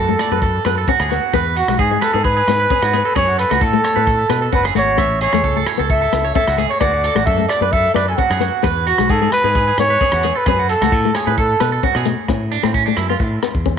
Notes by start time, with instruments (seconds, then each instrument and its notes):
Already playing: fingered electric bass F#2, clean electric guitar A4, trumpet A4
0.09 nylon-string guitar A3
0.19 clean electric guitar D5, cross-stick, closed hi-hat
0.31 fingered electric bass F#2, nylon-string guitar B3, clean electric guitar B4
0.42 clean electric guitar A4, kick
0.65 fingered electric bass F#2, nylon-string guitar B3, clean electric guitar B4, cross-stick, closed hi-hat
0.78 clean electric guitar A4
0.88 nylon-string guitar C#4, clean electric guitar F#4, kick
1.00 fingered electric bass D2, clean electric guitar G#4, cross-stick
1.11 nylon-string guitar B3, clean electric guitar F#4, closed hi-hat
1.33 fingered electric bass E2, nylon-string guitar B3, clean electric guitar B4, kick, cross-stick
1.57 clean electric guitar F#4, trumpet F#4, closed hi-hat
1.68 fingered electric bass B1, nylon-string guitar G#3, cross-stick
1.79 fingered electric bass G#2, clean electric guitar G#4, trumpet G#4, kick
1.91 nylon-string guitar G#3, clean electric guitar G#4
2.01 trumpet A4, clean electric guitar B4, cross-stick, closed hi-hat
2.13 fingered electric bass G#2, nylon-string guitar B3, clean electric guitar G#4
2.24 clean electric guitar G#4, trumpet B4, kick
2.37 clean electric guitar G#4
2.48 fingered electric bass G#2, nylon-string guitar B3, cross-stick, closed hi-hat
2.60 clean electric guitar B4
2.70 nylon-string guitar C#4, clean electric guitar G#4, kick
2.82 fingered electric bass G#2, clean electric guitar F#4, cross-stick
2.93 nylon-string guitar B3, clean electric guitar G#4, closed hi-hat
3.05 clean electric guitar A4
3.15 fingered electric bass F#2, nylon-string guitar C#4, clean electric guitar G#4, trumpet C#5, kick, cross-stick
3.28 clean electric guitar F#4
3.38 clean electric guitar A4, trumpet B4, closed hi-hat
3.50 fingered electric bass C#2, nylon-string guitar A3, clean electric guitar F#4, cross-stick
3.61 fingered electric bass A2, clean electric guitar A4, trumpet A4, kick
3.73 nylon-string guitar A3
3.84 clean electric guitar C#5, cross-stick, closed hi-hat
3.96 fingered electric bass A2, nylon-string guitar B3, clean electric guitar B4
4.07 clean electric guitar A4, kick
4.29 fingered electric bass B2, nylon-string guitar B3, clean electric guitar B4, cross-stick, closed hi-hat
4.42 clean electric guitar A4
4.52 fingered electric bass F#1, nylon-string guitar C#4, clean electric guitar F#4, trumpet B4, kick
4.64 clean electric guitar G#4, cross-stick
4.75 fingered electric bass G#1, nylon-string guitar A3, clean electric guitar F#4, trumpet C#5, closed hi-hat
4.97 fingered electric bass A1, nylon-string guitar C#4, clean electric guitar E5, kick, cross-stick
5.21 clean electric guitar G#4, trumpet C#5, closed hi-hat
5.33 fingered electric bass E2, nylon-string guitar A3, cross-stick
5.44 fingered electric bass C#2, clean electric guitar A4, kick
5.56 nylon-string guitar A3, clean electric guitar A4
5.67 clean electric guitar C#5, cross-stick, closed hi-hat
5.78 fingered electric bass C#2, nylon-string guitar B3, clean electric guitar A4
5.90 clean electric guitar A4, trumpet E5, kick
6.02 clean electric guitar A4
6.12 fingered electric bass C#2, nylon-string guitar B3, cross-stick, closed hi-hat
6.25 clean electric guitar C#5
6.35 nylon-string guitar C#4, clean electric guitar A4, trumpet E5, kick
6.48 fingered electric bass C#2, clean electric guitar F#4, cross-stick
6.58 nylon-string guitar A3, clean electric guitar G#4, closed hi-hat
6.69 trumpet C#5, clean electric guitar C#5
6.80 fingered electric bass D2, nylon-string guitar B3, clean electric guitar F#4, trumpet D5, kick, cross-stick
6.94 clean electric guitar F#4
7.04 clean electric guitar A4, closed hi-hat
7.15 fingered electric bass A1, nylon-string guitar A3, clean electric guitar F#4, cross-stick
7.26 fingered electric bass F#2, clean electric guitar A4, trumpet E5, kick
7.38 nylon-string guitar A3
7.48 trumpet D5, clean electric guitar D5, cross-stick, closed hi-hat
7.61 fingered electric bass F#2, nylon-string guitar B3, clean electric guitar B4
7.72 clean electric guitar A4, trumpet E5, kick
7.94 fingered electric bass F#2, nylon-string guitar B3, clean electric guitar B4, trumpet D5, cross-stick, closed hi-hat
8.08 clean electric guitar A4, trumpet G#5
8.17 nylon-string guitar C#4, clean electric guitar F#4, trumpet F#5, kick
8.30 fingered electric bass F#2, clean electric guitar G#4, cross-stick
8.40 nylon-string guitar B3, clean electric guitar F#4, closed hi-hat
8.63 fingered electric bass E2, nylon-string guitar B3, clean electric guitar B4, kick, cross-stick
8.87 clean electric guitar F#4, trumpet F#4, closed hi-hat
8.98 fingered electric bass B1, nylon-string guitar G#3, cross-stick
9.10 fingered electric bass G#2, clean electric guitar G#4, trumpet A4, kick
9.22 nylon-string guitar G#3, clean electric guitar G#4
9.32 trumpet B4, cross-stick, closed hi-hat
9.44 fingered electric bass G#2, nylon-string guitar B3, clean electric guitar G#4
9.55 clean electric guitar G#4, kick
9.68 clean electric guitar G#4
9.78 fingered electric bass G#2, nylon-string guitar B3, trumpet C#5, cross-stick, closed hi-hat
9.90 clean electric guitar B4
10.01 nylon-string guitar C#4, clean electric guitar G#4, kick
10.12 fingered electric bass E2, clean electric guitar F#4, cross-stick
10.23 clean electric guitar G#4, muted nylon-string guitar stroke, closed hi-hat
10.35 clean electric guitar A4, trumpet B4
10.46 fingered electric bass F#2, nylon-string guitar C#4, clean electric guitar G#4, trumpet B4, kick, cross-stick
10.59 clean electric guitar F#4
10.69 clean electric guitar A4, trumpet A4, closed hi-hat
10.81 fingered electric bass C#2, nylon-string guitar A3, clean electric guitar F#4, cross-stick
10.92 fingered electric bass A2, clean electric guitar A4, kick
11.05 nylon-string guitar A3
11.15 trumpet G#4, clean electric guitar C#5, cross-stick, closed hi-hat
11.27 fingered electric bass A2, clean electric guitar B4, muted nylon-string guitar stroke
11.38 clean electric guitar A4, trumpet A4, kick
11.60 fingered electric bass B2, nylon-string guitar B3, clean electric guitar B4, cross-stick, closed hi-hat
11.72 clean electric guitar A4
11.83 nylon-string guitar C#4, clean electric guitar F#4, kick
11.95 fingered electric bass B2, clean electric guitar G#4, cross-stick
12.06 nylon-string guitar A3, closed hi-hat
12.28 fingered electric bass A2, nylon-string guitar C#4, kick, cross-stick
12.52 clean electric guitar D4, closed hi-hat
12.63 fingered electric bass A2, nylon-string guitar A3, clean electric guitar C4, cross-stick
12.74 clean electric guitar C#4, kick
12.86 nylon-string guitar A3, clean electric guitar D4
12.97 fingered electric bass F#2, clean electric guitar E4, cross-stick, closed hi-hat
13.10 nylon-string guitar B3, clean electric guitar F4
13.20 fingered electric bass A2, muted clean electric guitar stroke, kick
13.43 nylon-string guitar B3, cross-stick, closed hi-hat
13.55 fingered electric bass E2, kick
13.66 nylon-string guitar C#4, kick